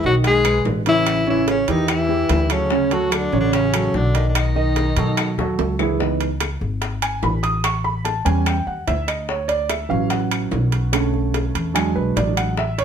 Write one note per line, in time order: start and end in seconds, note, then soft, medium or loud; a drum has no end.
0.04 0.61 B1 medium
0.04 0.38 D#3 medium
0.04 0.15 F#3 medium
0.04 0.38 D#4 medium
0.04 0.15 F#4 loud
0.04 0.38 D#5 medium
0.04 high bongo soft
0.24 0.63 G#3 loud
0.24 0.64 G#4 loud
0.24 high bongo medium
0.24 high timbale medium
0.45 0.79 G#3 medium
0.45 0.79 G#4 medium
0.45 0.79 B4 medium
0.45 high timbale medium
0.45 claves medium
0.65 1.62 A1 medium
0.65 high bongo soft
0.65 low bongo medium
0.65 low timbale medium
0.86 1.20 C#3 medium
0.86 1.25 E3 medium
0.86 1.20 C#4 medium
0.86 1.25 E4 loud
0.86 1.20 C#5 medium
0.86 high bongo soft
0.86 high timbale medium
1.06 high bongo medium
1.06 high timbale medium
1.06 claves medium
1.27 1.61 C#3 medium
1.27 1.47 E3 medium
1.27 1.61 C#4 medium
1.27 1.48 E4 medium
1.27 1.61 C#5 medium
1.27 high bongo soft
1.48 1.71 C#3 medium
1.48 1.72 C#4 loud
1.48 high bongo medium
1.48 high timbale medium
1.68 2.26 E2 medium
1.68 1.89 D#3 medium
1.68 2.02 E3 medium
1.68 1.90 D#4 loud
1.68 2.02 E4 medium
1.68 2.02 G4 medium
1.68 high bongo soft
1.68 high timbale medium
1.88 2.53 E3 medium
1.88 2.53 E4 loud
1.88 high bongo medium
1.88 high timbale medium
1.88 claves medium
2.09 2.43 E3 medium
2.09 2.43 E4 medium
2.09 2.43 G4 medium
2.29 3.26 D2 medium
2.29 high bongo soft
2.29 low bongo medium
2.29 high timbale medium
2.29 low timbale medium
2.50 2.94 C#3 medium
2.50 2.67 F#3 medium
2.50 2.95 C#4 medium
2.50 2.67 F#4 medium
2.50 2.67 A4 medium
2.50 high bongo soft
2.50 high timbale medium
2.50 claves medium
2.70 2.88 C#3 medium
2.70 2.88 C#4 medium
2.70 2.88 C#5 medium
2.70 high bongo medium
2.91 3.25 F#3 medium
2.91 3.15 F#3 medium
2.91 3.25 F#4 medium
2.91 3.15 F#4 medium
2.91 3.25 A4 medium
2.91 high bongo soft
2.91 high timbale medium
3.12 3.39 D3 medium
3.12 3.40 D4 loud
3.12 high bongo medium
3.12 high timbale medium
3.12 claves medium
3.32 3.90 A1 medium
3.32 3.66 C#3 medium
3.32 3.66 C#4 medium
3.32 3.67 C#5 medium
3.32 high bongo soft
3.40 3.52 D3 medium
3.40 3.53 D4 medium
3.53 3.97 C#3 medium
3.53 3.97 C#4 medium
3.53 high bongo medium
3.53 high timbale medium
3.73 4.07 F#3 medium
3.73 4.07 F#4 medium
3.73 4.08 A4 medium
3.73 high timbale medium
3.73 claves medium
3.94 4.91 B1 medium
3.94 4.28 D3 medium
3.94 4.28 D4 medium
3.94 high bongo soft
3.94 low bongo medium
4.14 4.48 D#3 medium
4.14 4.48 D#4 medium
4.14 4.48 D#5 medium
4.14 high bongo soft
4.14 high timbale medium
4.28 4.37 D3 medium
4.28 4.39 D4 medium
4.35 5.59 D#3 medium
4.35 5.59 D#4 medium
4.35 high bongo medium
4.35 high timbale loud
4.35 claves medium
4.56 4.89 D#3 medium
4.56 4.90 D#4 medium
4.56 4.90 D#5 medium
4.56 high bongo soft
4.76 high bongo medium
4.76 high timbale medium
4.96 5.35 B2 loud
4.96 5.31 F#3 medium
4.96 5.31 F#4 medium
4.96 5.31 A4 medium
4.96 high bongo soft
4.96 high timbale medium
5.17 high bongo medium
5.17 high timbale medium
5.17 claves medium
5.38 5.57 D#2 medium
5.38 5.72 F#3 medium
5.38 5.72 F#4 medium
5.38 5.72 A4 medium
5.38 high bongo loud
5.59 6.55 C#2 medium
5.59 high timbale medium
5.79 5.96 E3 medium
5.79 5.96 E4 medium
5.79 5.96 G#4 medium
5.79 low bongo medium
5.79 low timbale medium
5.79 claves medium
5.99 6.27 E3 medium
5.99 6.27 B3 soft
5.99 6.27 D#4 medium
5.99 high bongo medium
6.20 high bongo soft
6.20 high timbale medium
6.40 high bongo medium
6.40 high timbale medium
6.40 claves medium
6.61 7.19 G#1 medium
6.61 high bongo soft
6.82 high bongo medium
6.82 high timbale medium
7.02 7.22 G#5 medium
7.02 high timbale medium
7.02 claves medium
7.23 8.20 A1 medium
7.23 7.43 B5 medium
7.23 high bongo soft
7.23 low bongo medium
7.23 low timbale medium
7.43 7.63 D#6 medium
7.43 high bongo soft
7.43 high timbale medium
7.64 7.84 C#6 medium
7.64 high bongo medium
7.64 high timbale medium
7.64 claves medium
7.84 8.05 B5 medium
7.84 high bongo soft
8.05 8.25 A5 medium
8.05 high bongo medium
8.05 high timbale medium
8.25 8.64 E2 medium
8.25 8.53 G3 medium
8.25 8.53 B3 medium
8.25 8.53 C#4 medium
8.25 8.46 G#5 medium
8.25 high bongo soft
8.25 high timbale medium
8.46 8.66 G5 medium
8.46 high bongo medium
8.46 high timbale medium
8.46 claves medium
8.67 8.86 D#2 medium
8.67 8.87 F#5 medium
8.87 9.84 D2 medium
8.87 9.07 E5 medium
8.87 high bongo soft
8.87 low bongo medium
8.87 high timbale medium
9.08 9.28 D#5 medium
9.08 high bongo soft
9.08 high timbale medium
9.08 claves medium
9.29 9.49 C#5 medium
9.29 high bongo medium
9.48 9.69 D5 medium
9.48 high bongo soft
9.48 high timbale medium
9.69 9.90 E5 medium
9.69 high bongo medium
9.69 high timbale medium
9.69 claves medium
9.89 10.48 A1 medium
9.89 10.88 E3 medium
9.89 10.89 F#3 medium
9.89 10.89 C#4 medium
9.89 10.10 F5 medium
9.89 high bongo soft
10.10 11.30 F#5 medium
10.10 high bongo medium
10.10 high timbale medium
10.31 high timbale medium
10.31 claves medium
10.51 11.49 B1 medium
10.51 high bongo soft
10.51 low bongo medium
10.51 low timbale medium
10.72 high bongo soft
10.72 high timbale medium
10.92 11.71 D3 medium
10.92 11.71 A3 medium
10.92 11.71 C#4 medium
10.92 high bongo medium
10.92 high timbale medium
10.92 claves medium
11.14 high bongo soft
11.34 high bongo medium
11.34 high timbale medium
11.55 11.93 E2 medium
11.55 high bongo soft
11.55 high timbale medium
11.74 12.53 F#3 medium
11.74 12.53 G#3 soft
11.74 12.53 D4 medium
11.74 11.95 G#5 medium
11.74 high bongo medium
11.74 high timbale medium
11.74 claves medium
11.96 12.15 B1 medium
11.96 12.16 B4 medium
12.16 12.85 A1 medium
12.16 12.36 D5 medium
12.16 high bongo soft
12.16 low bongo medium
12.16 high timbale medium
12.16 low timbale medium
12.37 12.57 F#5 medium
12.37 high bongo soft
12.37 high timbale medium
12.37 claves medium
12.57 12.78 E5 medium
12.57 high bongo medium
12.78 12.85 C#5 loud
12.78 high bongo soft
12.78 high timbale medium